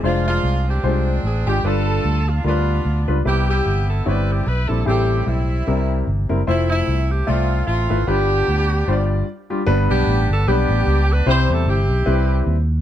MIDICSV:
0, 0, Header, 1, 4, 480
1, 0, Start_track
1, 0, Key_signature, 0, "major"
1, 0, Tempo, 400802
1, 42, Time_signature, 4, 2, 24, 8
1, 15345, End_track
2, 0, Start_track
2, 0, Title_t, "Saxophone section"
2, 0, Program_c, 0, 65
2, 57, Note_on_c, 0, 62, 60
2, 62, Note_on_c, 0, 56, 62
2, 68, Note_on_c, 0, 65, 90
2, 310, Note_off_c, 0, 56, 0
2, 311, Note_off_c, 0, 65, 0
2, 313, Note_off_c, 0, 62, 0
2, 325, Note_on_c, 0, 56, 65
2, 328, Note_on_c, 0, 62, 67
2, 336, Note_on_c, 0, 65, 90
2, 775, Note_off_c, 0, 65, 0
2, 804, Note_off_c, 0, 62, 0
2, 818, Note_on_c, 0, 62, 65
2, 819, Note_on_c, 0, 67, 85
2, 820, Note_on_c, 0, 60, 68
2, 1194, Note_off_c, 0, 67, 0
2, 1236, Note_off_c, 0, 56, 0
2, 1502, Note_on_c, 0, 68, 84
2, 1723, Note_off_c, 0, 62, 0
2, 1724, Note_off_c, 0, 60, 0
2, 1750, Note_off_c, 0, 68, 0
2, 1766, Note_on_c, 0, 67, 80
2, 1972, Note_off_c, 0, 67, 0
2, 1983, Note_on_c, 0, 62, 68
2, 1983, Note_on_c, 0, 65, 66
2, 1988, Note_on_c, 0, 69, 93
2, 2712, Note_off_c, 0, 65, 0
2, 2726, Note_on_c, 0, 65, 75
2, 2734, Note_off_c, 0, 69, 0
2, 2892, Note_off_c, 0, 62, 0
2, 2934, Note_off_c, 0, 65, 0
2, 2940, Note_on_c, 0, 59, 60
2, 2944, Note_on_c, 0, 62, 57
2, 2952, Note_on_c, 0, 65, 81
2, 3650, Note_off_c, 0, 65, 0
2, 3852, Note_off_c, 0, 59, 0
2, 3854, Note_off_c, 0, 62, 0
2, 3908, Note_on_c, 0, 59, 60
2, 3912, Note_on_c, 0, 64, 58
2, 3915, Note_on_c, 0, 67, 87
2, 4161, Note_off_c, 0, 67, 0
2, 4164, Note_off_c, 0, 59, 0
2, 4165, Note_off_c, 0, 64, 0
2, 4178, Note_on_c, 0, 59, 64
2, 4179, Note_on_c, 0, 64, 67
2, 4182, Note_on_c, 0, 67, 81
2, 4624, Note_off_c, 0, 67, 0
2, 4668, Note_on_c, 0, 69, 74
2, 4868, Note_off_c, 0, 69, 0
2, 4869, Note_off_c, 0, 64, 0
2, 4875, Note_on_c, 0, 67, 65
2, 4881, Note_on_c, 0, 71, 85
2, 4883, Note_on_c, 0, 64, 61
2, 5089, Note_off_c, 0, 59, 0
2, 5144, Note_off_c, 0, 67, 0
2, 5144, Note_off_c, 0, 71, 0
2, 5158, Note_on_c, 0, 67, 75
2, 5354, Note_off_c, 0, 67, 0
2, 5361, Note_on_c, 0, 71, 84
2, 5612, Note_on_c, 0, 69, 81
2, 5624, Note_off_c, 0, 71, 0
2, 5786, Note_off_c, 0, 64, 0
2, 5821, Note_off_c, 0, 69, 0
2, 5840, Note_on_c, 0, 64, 63
2, 5840, Note_on_c, 0, 67, 83
2, 5842, Note_on_c, 0, 60, 63
2, 6279, Note_off_c, 0, 67, 0
2, 6288, Note_off_c, 0, 60, 0
2, 6288, Note_off_c, 0, 64, 0
2, 6302, Note_on_c, 0, 60, 52
2, 6302, Note_on_c, 0, 64, 71
2, 6303, Note_on_c, 0, 55, 52
2, 7217, Note_off_c, 0, 55, 0
2, 7217, Note_off_c, 0, 60, 0
2, 7265, Note_off_c, 0, 64, 0
2, 7758, Note_on_c, 0, 57, 64
2, 7762, Note_on_c, 0, 60, 66
2, 7762, Note_on_c, 0, 64, 89
2, 8009, Note_off_c, 0, 57, 0
2, 8009, Note_off_c, 0, 64, 0
2, 8013, Note_off_c, 0, 60, 0
2, 8022, Note_on_c, 0, 64, 94
2, 8024, Note_on_c, 0, 57, 67
2, 8027, Note_on_c, 0, 60, 66
2, 8468, Note_off_c, 0, 64, 0
2, 8498, Note_on_c, 0, 67, 88
2, 8693, Note_off_c, 0, 57, 0
2, 8696, Note_off_c, 0, 60, 0
2, 8706, Note_off_c, 0, 67, 0
2, 8708, Note_on_c, 0, 57, 69
2, 8710, Note_on_c, 0, 60, 64
2, 8712, Note_on_c, 0, 65, 86
2, 9173, Note_off_c, 0, 57, 0
2, 9174, Note_off_c, 0, 65, 0
2, 9180, Note_off_c, 0, 60, 0
2, 9188, Note_on_c, 0, 57, 62
2, 9189, Note_on_c, 0, 65, 88
2, 9195, Note_on_c, 0, 60, 63
2, 9634, Note_off_c, 0, 57, 0
2, 9635, Note_off_c, 0, 65, 0
2, 9638, Note_off_c, 0, 60, 0
2, 9673, Note_on_c, 0, 67, 95
2, 9674, Note_on_c, 0, 62, 68
2, 9676, Note_on_c, 0, 59, 68
2, 11061, Note_off_c, 0, 62, 0
2, 11062, Note_off_c, 0, 59, 0
2, 11109, Note_off_c, 0, 67, 0
2, 11857, Note_on_c, 0, 67, 91
2, 11861, Note_on_c, 0, 62, 65
2, 11864, Note_on_c, 0, 59, 66
2, 12301, Note_off_c, 0, 67, 0
2, 12345, Note_on_c, 0, 69, 84
2, 12530, Note_off_c, 0, 59, 0
2, 12531, Note_off_c, 0, 62, 0
2, 12544, Note_on_c, 0, 59, 65
2, 12546, Note_off_c, 0, 69, 0
2, 12546, Note_on_c, 0, 62, 65
2, 12552, Note_on_c, 0, 67, 91
2, 13295, Note_off_c, 0, 67, 0
2, 13312, Note_on_c, 0, 71, 103
2, 13450, Note_off_c, 0, 59, 0
2, 13450, Note_off_c, 0, 62, 0
2, 13507, Note_off_c, 0, 71, 0
2, 13510, Note_on_c, 0, 64, 81
2, 13510, Note_on_c, 0, 67, 79
2, 13521, Note_on_c, 0, 72, 114
2, 13761, Note_off_c, 0, 72, 0
2, 13789, Note_on_c, 0, 69, 101
2, 13980, Note_off_c, 0, 64, 0
2, 13984, Note_off_c, 0, 69, 0
2, 13986, Note_off_c, 0, 67, 0
2, 13989, Note_on_c, 0, 60, 59
2, 13994, Note_on_c, 0, 64, 61
2, 14001, Note_on_c, 0, 67, 86
2, 14887, Note_off_c, 0, 60, 0
2, 14889, Note_off_c, 0, 64, 0
2, 14892, Note_off_c, 0, 67, 0
2, 15345, End_track
3, 0, Start_track
3, 0, Title_t, "Grand piano"
3, 0, Program_c, 1, 0
3, 37, Note_on_c, 1, 56, 64
3, 41, Note_on_c, 1, 62, 63
3, 43, Note_on_c, 1, 65, 62
3, 48, Note_on_c, 1, 72, 74
3, 631, Note_off_c, 1, 56, 0
3, 634, Note_off_c, 1, 62, 0
3, 635, Note_off_c, 1, 65, 0
3, 637, Note_off_c, 1, 72, 0
3, 1003, Note_on_c, 1, 72, 76
3, 1005, Note_on_c, 1, 56, 66
3, 1005, Note_on_c, 1, 65, 62
3, 1009, Note_on_c, 1, 62, 61
3, 1445, Note_off_c, 1, 72, 0
3, 1446, Note_off_c, 1, 56, 0
3, 1446, Note_off_c, 1, 65, 0
3, 1448, Note_off_c, 1, 62, 0
3, 1757, Note_on_c, 1, 62, 53
3, 1758, Note_on_c, 1, 56, 58
3, 1758, Note_on_c, 1, 68, 66
3, 1759, Note_on_c, 1, 65, 51
3, 1884, Note_off_c, 1, 56, 0
3, 1884, Note_off_c, 1, 62, 0
3, 1884, Note_off_c, 1, 68, 0
3, 1885, Note_off_c, 1, 65, 0
3, 1964, Note_on_c, 1, 62, 62
3, 1966, Note_on_c, 1, 55, 64
3, 1968, Note_on_c, 1, 65, 57
3, 1969, Note_on_c, 1, 43, 58
3, 1971, Note_on_c, 1, 71, 74
3, 2559, Note_off_c, 1, 62, 0
3, 2560, Note_off_c, 1, 55, 0
3, 2560, Note_off_c, 1, 65, 0
3, 2562, Note_off_c, 1, 71, 0
3, 2677, Note_off_c, 1, 43, 0
3, 2919, Note_on_c, 1, 55, 61
3, 2924, Note_on_c, 1, 62, 59
3, 2926, Note_on_c, 1, 70, 58
3, 2927, Note_on_c, 1, 65, 62
3, 2983, Note_on_c, 1, 71, 73
3, 2995, Note_off_c, 1, 70, 0
3, 3367, Note_off_c, 1, 55, 0
3, 3369, Note_off_c, 1, 62, 0
3, 3370, Note_off_c, 1, 65, 0
3, 3399, Note_off_c, 1, 71, 0
3, 3685, Note_on_c, 1, 55, 63
3, 3686, Note_on_c, 1, 62, 63
3, 3686, Note_on_c, 1, 65, 63
3, 3689, Note_on_c, 1, 71, 73
3, 3812, Note_off_c, 1, 55, 0
3, 3812, Note_off_c, 1, 62, 0
3, 3812, Note_off_c, 1, 65, 0
3, 3814, Note_off_c, 1, 71, 0
3, 3890, Note_on_c, 1, 55, 64
3, 3893, Note_on_c, 1, 48, 56
3, 3896, Note_on_c, 1, 71, 70
3, 3897, Note_on_c, 1, 59, 58
3, 3898, Note_on_c, 1, 64, 58
3, 4485, Note_off_c, 1, 55, 0
3, 4488, Note_off_c, 1, 59, 0
3, 4488, Note_off_c, 1, 71, 0
3, 4489, Note_off_c, 1, 64, 0
3, 4602, Note_off_c, 1, 48, 0
3, 4857, Note_on_c, 1, 55, 66
3, 4861, Note_on_c, 1, 60, 63
3, 4863, Note_on_c, 1, 64, 61
3, 4863, Note_on_c, 1, 73, 59
3, 4920, Note_on_c, 1, 74, 71
3, 4927, Note_off_c, 1, 73, 0
3, 5298, Note_off_c, 1, 55, 0
3, 5300, Note_off_c, 1, 60, 0
3, 5301, Note_off_c, 1, 64, 0
3, 5330, Note_off_c, 1, 74, 0
3, 5611, Note_on_c, 1, 55, 57
3, 5611, Note_on_c, 1, 60, 54
3, 5614, Note_on_c, 1, 64, 50
3, 5617, Note_on_c, 1, 67, 61
3, 5738, Note_off_c, 1, 55, 0
3, 5738, Note_off_c, 1, 60, 0
3, 5739, Note_off_c, 1, 64, 0
3, 5741, Note_off_c, 1, 67, 0
3, 5813, Note_on_c, 1, 55, 65
3, 5814, Note_on_c, 1, 60, 58
3, 5815, Note_on_c, 1, 45, 58
3, 5816, Note_on_c, 1, 64, 61
3, 5819, Note_on_c, 1, 68, 61
3, 5873, Note_on_c, 1, 69, 73
3, 5886, Note_off_c, 1, 68, 0
3, 6409, Note_off_c, 1, 55, 0
3, 6409, Note_off_c, 1, 60, 0
3, 6410, Note_off_c, 1, 64, 0
3, 6439, Note_off_c, 1, 69, 0
3, 6525, Note_off_c, 1, 45, 0
3, 6790, Note_on_c, 1, 55, 67
3, 6792, Note_on_c, 1, 70, 75
3, 6795, Note_on_c, 1, 60, 62
3, 6796, Note_on_c, 1, 48, 56
3, 6797, Note_on_c, 1, 62, 45
3, 6855, Note_on_c, 1, 64, 61
3, 6856, Note_off_c, 1, 62, 0
3, 7227, Note_off_c, 1, 55, 0
3, 7228, Note_off_c, 1, 70, 0
3, 7229, Note_off_c, 1, 60, 0
3, 7259, Note_off_c, 1, 64, 0
3, 7496, Note_off_c, 1, 48, 0
3, 7535, Note_on_c, 1, 55, 69
3, 7537, Note_on_c, 1, 60, 64
3, 7539, Note_on_c, 1, 70, 79
3, 7543, Note_on_c, 1, 64, 62
3, 7661, Note_off_c, 1, 55, 0
3, 7662, Note_off_c, 1, 60, 0
3, 7663, Note_off_c, 1, 70, 0
3, 7665, Note_off_c, 1, 64, 0
3, 7749, Note_on_c, 1, 57, 66
3, 7752, Note_on_c, 1, 72, 75
3, 7753, Note_on_c, 1, 64, 64
3, 7753, Note_on_c, 1, 65, 62
3, 8338, Note_off_c, 1, 57, 0
3, 8339, Note_off_c, 1, 72, 0
3, 8340, Note_off_c, 1, 64, 0
3, 8340, Note_off_c, 1, 65, 0
3, 8705, Note_on_c, 1, 57, 68
3, 8706, Note_on_c, 1, 76, 60
3, 8713, Note_on_c, 1, 65, 62
3, 8714, Note_on_c, 1, 74, 71
3, 9145, Note_off_c, 1, 57, 0
3, 9146, Note_off_c, 1, 76, 0
3, 9149, Note_off_c, 1, 65, 0
3, 9150, Note_off_c, 1, 74, 0
3, 9457, Note_on_c, 1, 57, 59
3, 9459, Note_on_c, 1, 64, 53
3, 9463, Note_on_c, 1, 71, 68
3, 9465, Note_on_c, 1, 65, 57
3, 9583, Note_off_c, 1, 57, 0
3, 9584, Note_off_c, 1, 64, 0
3, 9586, Note_off_c, 1, 71, 0
3, 9587, Note_off_c, 1, 65, 0
3, 9665, Note_on_c, 1, 62, 61
3, 9668, Note_on_c, 1, 65, 60
3, 9670, Note_on_c, 1, 43, 61
3, 9670, Note_on_c, 1, 71, 72
3, 9671, Note_on_c, 1, 55, 67
3, 10256, Note_off_c, 1, 62, 0
3, 10257, Note_off_c, 1, 65, 0
3, 10258, Note_off_c, 1, 71, 0
3, 10259, Note_off_c, 1, 55, 0
3, 10373, Note_off_c, 1, 43, 0
3, 10629, Note_on_c, 1, 62, 73
3, 10631, Note_on_c, 1, 55, 77
3, 10635, Note_on_c, 1, 72, 70
3, 10636, Note_on_c, 1, 65, 66
3, 10689, Note_on_c, 1, 74, 85
3, 10696, Note_off_c, 1, 72, 0
3, 11066, Note_off_c, 1, 62, 0
3, 11067, Note_off_c, 1, 55, 0
3, 11069, Note_off_c, 1, 65, 0
3, 11096, Note_off_c, 1, 74, 0
3, 11378, Note_on_c, 1, 62, 61
3, 11379, Note_on_c, 1, 55, 69
3, 11382, Note_on_c, 1, 67, 77
3, 11383, Note_on_c, 1, 65, 60
3, 11502, Note_off_c, 1, 55, 0
3, 11502, Note_off_c, 1, 62, 0
3, 11504, Note_off_c, 1, 65, 0
3, 11504, Note_off_c, 1, 67, 0
3, 11575, Note_on_c, 1, 55, 83
3, 11575, Note_on_c, 1, 71, 100
3, 11576, Note_on_c, 1, 43, 77
3, 11579, Note_on_c, 1, 59, 79
3, 11579, Note_on_c, 1, 62, 82
3, 12167, Note_off_c, 1, 55, 0
3, 12167, Note_off_c, 1, 71, 0
3, 12169, Note_off_c, 1, 59, 0
3, 12169, Note_off_c, 1, 62, 0
3, 12282, Note_off_c, 1, 43, 0
3, 12545, Note_on_c, 1, 55, 75
3, 12545, Note_on_c, 1, 71, 76
3, 12548, Note_on_c, 1, 59, 69
3, 12548, Note_on_c, 1, 62, 65
3, 13130, Note_off_c, 1, 55, 0
3, 13130, Note_off_c, 1, 71, 0
3, 13131, Note_off_c, 1, 59, 0
3, 13131, Note_off_c, 1, 62, 0
3, 13491, Note_on_c, 1, 72, 84
3, 13493, Note_on_c, 1, 48, 63
3, 13495, Note_on_c, 1, 55, 73
3, 13496, Note_on_c, 1, 60, 65
3, 13496, Note_on_c, 1, 64, 67
3, 14079, Note_off_c, 1, 72, 0
3, 14081, Note_off_c, 1, 55, 0
3, 14081, Note_off_c, 1, 64, 0
3, 14082, Note_off_c, 1, 60, 0
3, 14194, Note_off_c, 1, 48, 0
3, 14441, Note_on_c, 1, 60, 69
3, 14441, Note_on_c, 1, 64, 67
3, 14442, Note_on_c, 1, 55, 71
3, 14444, Note_on_c, 1, 71, 83
3, 15031, Note_off_c, 1, 55, 0
3, 15031, Note_off_c, 1, 60, 0
3, 15031, Note_off_c, 1, 64, 0
3, 15032, Note_off_c, 1, 71, 0
3, 15345, End_track
4, 0, Start_track
4, 0, Title_t, "Fingered electric bass"
4, 0, Program_c, 2, 33
4, 40, Note_on_c, 2, 29, 96
4, 451, Note_off_c, 2, 29, 0
4, 521, Note_on_c, 2, 36, 87
4, 932, Note_off_c, 2, 36, 0
4, 1000, Note_on_c, 2, 36, 81
4, 1412, Note_off_c, 2, 36, 0
4, 1479, Note_on_c, 2, 33, 84
4, 1715, Note_off_c, 2, 33, 0
4, 1748, Note_on_c, 2, 32, 85
4, 1931, Note_off_c, 2, 32, 0
4, 1957, Note_on_c, 2, 31, 92
4, 2372, Note_off_c, 2, 31, 0
4, 2450, Note_on_c, 2, 38, 84
4, 2860, Note_off_c, 2, 38, 0
4, 2929, Note_on_c, 2, 38, 88
4, 3340, Note_off_c, 2, 38, 0
4, 3415, Note_on_c, 2, 38, 84
4, 3647, Note_off_c, 2, 38, 0
4, 3690, Note_on_c, 2, 37, 76
4, 3866, Note_off_c, 2, 37, 0
4, 3902, Note_on_c, 2, 36, 93
4, 4309, Note_off_c, 2, 36, 0
4, 4384, Note_on_c, 2, 31, 77
4, 4791, Note_off_c, 2, 31, 0
4, 4869, Note_on_c, 2, 31, 88
4, 5274, Note_off_c, 2, 31, 0
4, 5351, Note_on_c, 2, 35, 84
4, 5579, Note_off_c, 2, 35, 0
4, 5629, Note_on_c, 2, 34, 76
4, 5799, Note_off_c, 2, 34, 0
4, 5832, Note_on_c, 2, 33, 84
4, 6236, Note_off_c, 2, 33, 0
4, 6311, Note_on_c, 2, 35, 80
4, 6717, Note_off_c, 2, 35, 0
4, 6800, Note_on_c, 2, 36, 92
4, 7202, Note_off_c, 2, 36, 0
4, 7273, Note_on_c, 2, 31, 80
4, 7502, Note_off_c, 2, 31, 0
4, 7540, Note_on_c, 2, 30, 72
4, 7716, Note_off_c, 2, 30, 0
4, 7756, Note_on_c, 2, 29, 93
4, 8160, Note_off_c, 2, 29, 0
4, 8234, Note_on_c, 2, 36, 89
4, 8639, Note_off_c, 2, 36, 0
4, 8723, Note_on_c, 2, 36, 86
4, 9124, Note_off_c, 2, 36, 0
4, 9192, Note_on_c, 2, 33, 87
4, 9422, Note_off_c, 2, 33, 0
4, 9463, Note_on_c, 2, 32, 82
4, 9638, Note_off_c, 2, 32, 0
4, 9670, Note_on_c, 2, 31, 97
4, 10077, Note_off_c, 2, 31, 0
4, 10157, Note_on_c, 2, 38, 84
4, 10560, Note_off_c, 2, 38, 0
4, 10630, Note_on_c, 2, 31, 81
4, 11036, Note_off_c, 2, 31, 0
4, 11583, Note_on_c, 2, 31, 105
4, 11814, Note_off_c, 2, 31, 0
4, 11856, Note_on_c, 2, 35, 87
4, 12032, Note_off_c, 2, 35, 0
4, 12061, Note_on_c, 2, 33, 87
4, 12292, Note_off_c, 2, 33, 0
4, 12327, Note_on_c, 2, 31, 86
4, 12505, Note_off_c, 2, 31, 0
4, 12535, Note_on_c, 2, 35, 89
4, 12768, Note_off_c, 2, 35, 0
4, 12803, Note_on_c, 2, 33, 86
4, 12982, Note_off_c, 2, 33, 0
4, 13013, Note_on_c, 2, 37, 92
4, 13421, Note_off_c, 2, 37, 0
4, 13490, Note_on_c, 2, 36, 101
4, 13722, Note_off_c, 2, 36, 0
4, 13766, Note_on_c, 2, 40, 88
4, 13941, Note_off_c, 2, 40, 0
4, 13959, Note_on_c, 2, 31, 82
4, 14195, Note_off_c, 2, 31, 0
4, 14229, Note_on_c, 2, 35, 88
4, 14410, Note_off_c, 2, 35, 0
4, 14451, Note_on_c, 2, 36, 92
4, 14856, Note_off_c, 2, 36, 0
4, 14927, Note_on_c, 2, 39, 92
4, 15332, Note_off_c, 2, 39, 0
4, 15345, End_track
0, 0, End_of_file